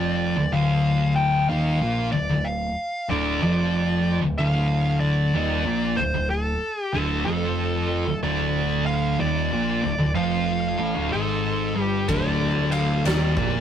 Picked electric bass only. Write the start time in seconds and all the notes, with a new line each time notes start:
Already playing: F1
0.37 D1
0.53 D1
1.50 D#1
1.81 A#1
2.13 D1
2.29 D1
3.09 D1
3.41 F1
4.21 D1
4.38 D1
5.34 D#1
5.65 A#1
5.97 D1
6.13 D1
6.93 D1
7.26 F1
8.06 D1
8.23 D1
9.20 D#1
9.51 A#1
9.83 D1
9.99 D1
10.15 F1
10.79 A1
10.96 D1
11.13 G#1
11.75 G1
12.09 D1
13.05 D#1
13.37 A#1